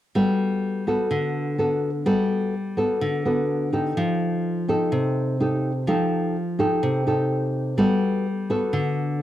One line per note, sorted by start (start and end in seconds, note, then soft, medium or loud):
0.15 1.08 G3 medium
0.15 0.83 B3 soft
0.15 0.83 F#4 soft
0.15 0.83 A4 medium
0.87 1.55 B3 medium
0.87 1.55 F#4 medium
0.87 1.55 A4 medium
1.11 2.04 D3 medium
1.58 1.89 B3 soft
1.58 1.89 F#4 medium
1.58 1.90 A4 medium
2.06 2.99 G3 medium
2.06 2.53 B3 medium
2.06 2.54 F#4 medium
2.06 2.54 A4 medium
2.77 3.21 B3 medium
2.77 3.22 F#4 medium
2.77 3.22 A4 medium
3.01 3.94 D3 medium
3.25 3.69 B3 medium
3.25 3.70 F#4 medium
3.25 3.70 A4 medium
3.73 4.64 D#4 medium
3.73 4.65 G4 medium
3.73 4.65 A4 medium
3.97 4.90 F3 medium
4.68 5.36 D#4 medium
4.68 5.36 G4 medium
4.68 5.37 A4 medium
4.92 5.85 C3 medium
5.40 5.71 D#4 medium
5.40 5.71 G4 medium
5.40 5.71 A4 medium
5.87 6.81 F3 medium
5.87 6.35 D#4 medium
5.87 6.35 G4 medium
5.87 6.36 A4 medium
6.59 7.03 D#4 medium
6.59 7.03 G4 medium
6.59 7.03 A4 medium
6.83 7.76 C3 medium
7.07 7.75 D#4 medium
7.07 7.75 G4 medium
7.07 7.75 A4 medium
7.78 8.71 G3 medium
7.78 8.26 B3 soft
7.78 8.26 F#4 medium
7.78 8.26 A4 medium
8.50 9.18 B3 medium
8.50 9.18 F#4 medium
8.50 9.18 A4 medium
8.73 9.22 D3 medium